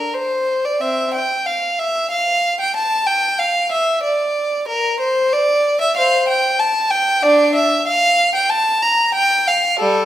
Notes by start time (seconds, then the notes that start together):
Already playing: A#4
0.14 C5
0.64 D5
0.80 C4 E5
1.14 G5
1.46 F5
1.79 E5
2.11 F5
2.60 G5
2.76 A5
3.07 G5
3.39 F5
3.71 E5
4.03 D5
4.68 A#4
5.00 C5
5.33 D5
5.81 E5
5.96 C5 F5
6.28 G5
6.59 A5
6.91 G5
7.23 D4 D5
7.55 E5
7.87 F5
8.35 G5
8.50 A5
8.82 A#5
9.14 G5
9.47 F5
9.79 G3 A4